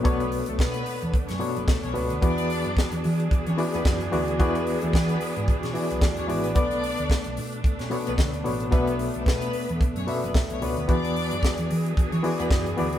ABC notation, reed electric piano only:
X:1
M:4/4
L:1/8
Q:"Swing 16ths" 1/4=111
K:Bdor
V:1 name="Reed electric piano"
[B,,B,DAc]3 z2 [B,,B,DAc] z [B,,B,DAc] | [E,B,FGd]3 z2 [E,B,FGd] z [E,B,FGd] | [E,B,FGd]3 z2 [E,B,FGd] z [E,B,FGd] | [B,,B,DAd]3 z2 [B,,B,DAc] z [B,,B,DAc] |
[B,,B,DAe]3 z2 [B,,B,DAe] z [B,,B,DAc] | [E,B,FGd]3 z2 [E,B,FGd] z [E,B,FGd] |]